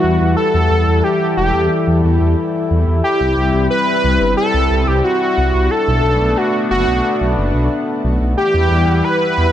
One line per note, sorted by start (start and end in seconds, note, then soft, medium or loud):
0.00 3.00 E3 medium
0.00 3.00 G3 medium
0.00 5.67 E4 medium
0.00 0.36 F#4 loud
0.00 0.35 B4 medium
0.00 3.00 F#5 medium
0.04 0.19 E2 medium
0.21 0.35 E2 medium
0.37 1.05 A4 loud
0.37 3.01 A4 medium
0.54 0.69 E2 medium
0.71 0.85 E2 medium
0.87 1.02 E2 medium
1.04 1.36 G4 medium
1.37 1.52 E1 medium
1.37 2.00 G4 medium
1.54 1.69 E2 medium
1.87 2.02 E2 medium
2.04 2.19 E2 medium
2.21 2.35 E2 medium
2.71 2.85 E2 medium
2.87 3.02 E2 medium
3.04 5.68 G3 medium
3.04 5.68 C4 medium
3.04 3.67 G4 loud
3.21 3.35 C2 medium
3.37 3.52 C2 medium
3.54 3.69 C2 medium
3.70 4.33 B4 loud
4.04 4.19 C2 medium
4.21 4.35 G1 medium
4.37 4.89 A4 loud
4.54 4.69 C2 medium
4.71 4.85 C2 medium
4.87 5.02 C2 medium
4.87 5.03 G4 medium
5.04 5.72 F#4 medium
5.38 5.52 C2 medium
5.54 5.69 C2 medium
5.71 8.35 A3 medium
5.71 8.35 B3 medium
5.71 8.35 D4 medium
5.71 6.39 A4 loud
5.88 6.02 B1 medium
6.04 6.19 B1 medium
6.21 6.35 B1 medium
6.37 6.70 F#4 medium
6.71 6.85 F#1 medium
6.71 7.33 F#4 medium
6.88 7.02 B1 medium
7.21 7.35 B1 medium
7.38 7.52 F#1 medium
7.54 7.69 B1 medium
8.04 8.19 B1 medium
8.21 8.35 B1 medium
8.37 9.52 E3 medium
8.37 9.52 G3 medium
8.37 9.52 E4 medium
8.37 9.06 G4 loud
8.37 9.52 B4 medium
8.37 9.52 F#5 medium
8.54 8.69 E2 medium
8.71 8.85 E2 medium
8.87 9.02 E2 medium
9.04 9.52 B4 loud
9.38 9.52 E2 medium